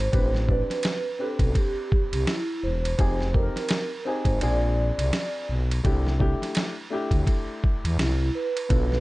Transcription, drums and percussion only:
0.00 ride
0.13 kick, ride
0.35 snare
0.49 kick
0.70 snare, ride
0.83 snare, hi-hat pedal, ride
1.39 kick, ride
1.55 kick, ride
1.92 kick
2.13 ride
2.27 snare, hi-hat pedal, ride
2.85 ride
2.99 kick, ride
3.21 snare
3.34 kick
3.56 snare, ride
3.69 snare, hi-hat pedal, ride
4.25 kick, ride
4.41 ride
4.99 ride
5.13 snare, hi-hat pedal, ride
5.71 ride
5.85 kick, ride
6.07 snare
6.20 kick
6.42 snare, ride
6.55 snare, hi-hat pedal, ride
7.11 kick, ride
7.27 kick, ride
7.64 kick
7.85 ride
7.99 snare, hi-hat pedal, ride
8.57 ride
8.70 kick, ride
8.92 snare

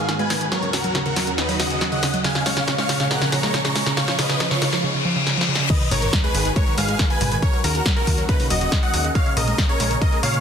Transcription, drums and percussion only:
0.09 snare, closed hi-hat
0.19 closed hi-hat
0.30 snare, open hi-hat, mid tom
0.41 closed hi-hat
0.52 snare, closed hi-hat
0.63 closed hi-hat
0.73 snare, open hi-hat
0.84 closed hi-hat
0.95 snare, closed hi-hat
1.06 closed hi-hat
1.16 snare, open hi-hat
1.27 closed hi-hat
1.38 snare, closed hi-hat
1.49 open hi-hat, mid tom
1.60 snare, open hi-hat
1.70 closed hi-hat
1.81 snare, closed hi-hat
1.92 closed hi-hat
2.03 snare, open hi-hat
2.14 closed hi-hat
2.24 snare, closed hi-hat
2.35 snare, closed hi-hat
2.46 snare, open hi-hat, mid tom
2.57 snare, closed hi-hat
2.68 snare, closed hi-hat
2.78 snare, closed hi-hat
2.89 snare, open hi-hat
3.00 snare, closed hi-hat
3.11 snare, closed hi-hat
3.22 snare, closed hi-hat
3.32 snare, open hi-hat
3.43 snare, closed hi-hat
3.54 snare, closed hi-hat
3.65 snare, closed hi-hat
3.76 snare, open hi-hat, mid tom
3.86 snare, closed hi-hat
3.97 snare, closed hi-hat
4.08 snare, closed hi-hat
4.19 snare, open hi-hat
4.29 snare, closed hi-hat
4.40 snare, closed hi-hat
4.51 snare, closed hi-hat
4.62 snare, open hi-hat
4.73 snare, closed hi-hat
5.27 snare
5.41 snare
5.55 snare
5.70 kick, closed hi-hat, crash
5.81 closed hi-hat
5.91 open hi-hat, mid tom
6.02 closed hi-hat
6.13 kick, snare, closed hi-hat
6.24 closed hi-hat
6.35 open hi-hat
6.45 closed hi-hat
6.56 kick, closed hi-hat
6.67 closed hi-hat
6.78 open hi-hat
6.88 closed hi-hat
6.99 kick, snare, closed hi-hat
7.10 closed hi-hat
7.21 open hi-hat, mid tom
7.32 closed hi-hat
7.42 kick, closed hi-hat
7.53 closed hi-hat
7.64 open hi-hat
7.75 closed hi-hat
7.86 kick, snare, closed hi-hat
7.96 closed hi-hat
8.07 kick, open hi-hat
8.18 closed hi-hat
8.29 kick, closed hi-hat
8.40 open hi-hat, mid tom
8.50 open hi-hat
8.61 closed hi-hat
8.72 kick, snare, closed hi-hat
8.83 closed hi-hat
8.94 open hi-hat
9.04 closed hi-hat
9.15 kick, closed hi-hat
9.26 closed hi-hat
9.37 open hi-hat, mid tom
9.48 closed hi-hat
9.58 kick, snare, closed hi-hat
9.69 closed hi-hat
9.80 open hi-hat
9.91 closed hi-hat
10.01 kick, closed hi-hat
10.12 closed hi-hat
10.23 open hi-hat
10.34 closed hi-hat

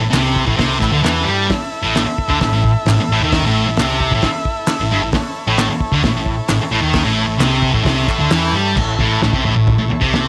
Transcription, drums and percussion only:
0.13 snare, clap, open hi-hat
0.36 kick
0.48 kick
0.59 kick, snare, open hi-hat
0.82 kick, clap
1.04 snare, clap, open hi-hat
1.50 kick, snare, open hi-hat
1.95 snare, clap, open hi-hat
2.18 kick
2.30 kick
2.41 kick, snare, open hi-hat
2.64 kick
2.86 snare, clap, open hi-hat
3.32 kick, snare, open hi-hat
3.77 snare, clap, open hi-hat
4.00 kick
4.12 kick
4.22 kick, snare, open hi-hat
4.45 kick
4.67 snare, clap, open hi-hat
5.12 kick, snare, open hi-hat
5.58 snare, clap, open hi-hat
5.81 kick
5.92 kick
6.03 kick, snare, open hi-hat
6.26 kick
6.48 snare, clap, open hi-hat
6.93 kick, snare, open hi-hat
7.40 snare, clap, open hi-hat
7.62 kick
7.74 kick
7.85 kick, snare, open hi-hat
8.08 kick, clap
8.30 snare, clap, open hi-hat
8.76 kick, floor tom, crash
8.99 kick, floor tom
9.22 snare, floor tom
9.33 kick
9.45 floor tom
9.67 kick, floor tom
9.90 floor tom
10.02 kick
10.13 snare, floor tom

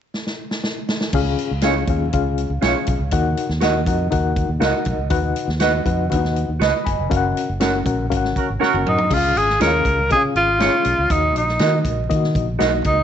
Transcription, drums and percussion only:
0.14 snare
0.27 snare
0.51 snare
0.64 snare
0.89 snare
1.01 snare
1.13 kick, crash
1.39 closed hi-hat
1.61 snare, closed hi-hat
1.87 kick, closed hi-hat
2.13 kick, closed hi-hat
2.38 closed hi-hat
2.62 snare, closed hi-hat
2.87 kick, closed hi-hat
3.11 kick, closed hi-hat
3.37 closed hi-hat
3.50 snare
3.61 snare, closed hi-hat
3.86 kick, closed hi-hat
4.12 kick, closed hi-hat
4.36 kick, closed hi-hat
4.62 snare, closed hi-hat
4.85 kick, closed hi-hat
5.10 kick, closed hi-hat
5.36 closed hi-hat
5.49 snare
5.60 snare, closed hi-hat
5.86 kick, closed hi-hat
6.12 kick, closed hi-hat
6.25 snare
6.36 closed hi-hat
6.61 snare, closed hi-hat
6.86 kick, closed hi-hat
7.11 kick, closed hi-hat
7.37 closed hi-hat
7.60 snare, closed hi-hat
7.86 kick, closed hi-hat
8.12 kick, closed hi-hat
8.25 snare
8.36 kick, closed hi-hat
8.62 snare
8.75 high tom
8.87 mid tom
8.98 floor tom
9.11 kick, crash
9.37 closed hi-hat
9.50 snare
9.61 snare, closed hi-hat
9.85 kick, closed hi-hat
10.10 kick, closed hi-hat
10.36 closed hi-hat
10.60 snare, closed hi-hat
10.85 closed hi-hat
11.10 kick, closed hi-hat
11.36 closed hi-hat
11.48 snare
11.59 snare, closed hi-hat
11.85 kick, closed hi-hat
12.11 kick, closed hi-hat
12.24 snare
12.35 kick, closed hi-hat
12.60 snare, closed hi-hat
12.84 kick, closed hi-hat

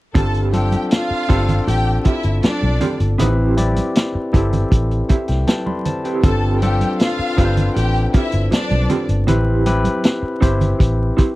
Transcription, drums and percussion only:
0.15 kick, closed hi-hat, muted conga, low conga
0.34 closed hi-hat
0.53 closed hi-hat, muted conga, high conga
0.72 closed hi-hat, high conga
0.91 snare, closed hi-hat
1.30 kick, closed hi-hat, muted conga
1.49 closed hi-hat, low conga
1.68 closed hi-hat, muted conga
2.05 kick, closed hi-hat
2.23 closed hi-hat
2.43 snare, closed hi-hat, muted conga, high conga
2.63 high conga
2.81 closed hi-hat, low conga
3.00 closed hi-hat
3.19 closed hi-hat, low conga
3.58 closed hi-hat, high conga
3.76 closed hi-hat, high conga
3.95 snare, closed hi-hat, muted conga
4.34 kick, closed hi-hat
4.53 closed hi-hat, low conga
4.72 kick, closed hi-hat
4.91 closed hi-hat
5.09 kick, closed hi-hat
5.28 snare, closed hi-hat
5.47 snare, closed hi-hat, muted conga, high conga
5.67 high conga
5.85 closed hi-hat, low conga
6.05 closed hi-hat
6.23 kick, closed hi-hat, muted conga, low conga
6.62 closed hi-hat, high conga
6.81 closed hi-hat, high conga
7.00 snare, closed hi-hat, muted conga
7.38 kick, closed hi-hat, muted conga
7.57 closed hi-hat, low conga
7.76 closed hi-hat
7.96 closed hi-hat
8.14 kick, closed hi-hat
8.32 closed hi-hat
8.52 snare, closed hi-hat, high conga
8.71 closed hi-hat, high conga
8.90 closed hi-hat, low conga
9.09 closed hi-hat
9.28 closed hi-hat, muted conga, low conga
9.66 closed hi-hat, high conga
9.84 closed hi-hat, high conga
10.04 snare, closed hi-hat, muted conga
10.42 kick, closed hi-hat
10.61 closed hi-hat, low conga
10.80 kick, closed hi-hat
11.18 kick, closed hi-hat, muted conga

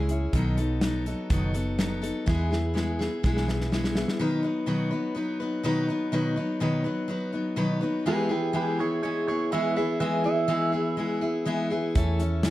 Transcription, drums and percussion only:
0.09 closed hi-hat
0.33 kick, closed hi-hat
0.58 closed hi-hat
0.81 snare, closed hi-hat
1.06 closed hi-hat
1.30 kick, closed hi-hat
1.54 closed hi-hat
1.79 snare, closed hi-hat
2.04 closed hi-hat
2.28 kick, snare
2.52 snare
2.76 snare
3.01 snare
3.24 kick, snare
3.37 snare
3.48 snare
3.60 snare
3.72 snare
3.84 snare
3.95 snare
4.08 snare
11.95 kick, closed hi-hat
12.20 closed hi-hat
12.43 snare, closed hi-hat

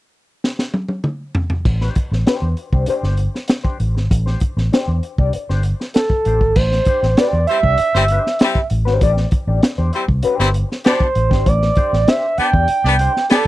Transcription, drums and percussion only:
0.44 snare
0.59 snare
0.74 high tom
0.89 high tom
1.04 mid tom
1.35 floor tom
1.50 floor tom
1.65 kick, crash
1.81 snare
1.95 kick, closed hi-hat
2.13 snare
2.27 snare, closed hi-hat
2.57 closed hi-hat
2.73 kick
2.86 closed hi-hat
3.04 snare
3.17 closed hi-hat
3.35 snare
3.48 snare, closed hi-hat
3.65 kick
3.80 closed hi-hat
3.97 snare
4.11 kick, closed hi-hat
4.27 snare
4.40 kick, closed hi-hat
4.58 snare
4.73 snare, closed hi-hat
5.03 closed hi-hat
5.18 kick
5.33 closed hi-hat
5.50 snare
5.63 closed hi-hat
5.81 snare
5.94 snare, closed hi-hat
6.10 kick
6.25 closed hi-hat
6.41 kick
6.56 kick, crash
6.72 snare
6.85 kick, closed hi-hat
7.03 snare
7.17 snare, closed hi-hat
7.47 closed hi-hat
7.63 kick
7.78 closed hi-hat
7.95 snare
8.08 closed hi-hat
8.27 snare
8.39 snare, closed hi-hat
8.55 kick
8.70 closed hi-hat
8.87 snare
9.01 kick, closed hi-hat
9.17 snare
9.31 kick, closed hi-hat
9.63 snare, closed hi-hat
9.93 closed hi-hat
10.08 kick
10.23 closed hi-hat
10.41 snare
10.54 closed hi-hat
10.72 snare
10.84 snare, closed hi-hat
11.00 kick
11.15 closed hi-hat
11.31 kick, snare
11.46 kick, closed hi-hat
11.62 snare
11.75 kick, closed hi-hat
11.94 snare
12.08 snare, closed hi-hat
12.38 closed hi-hat
12.53 kick
12.68 closed hi-hat
12.85 snare
12.99 closed hi-hat
13.17 snare
13.30 snare, closed hi-hat

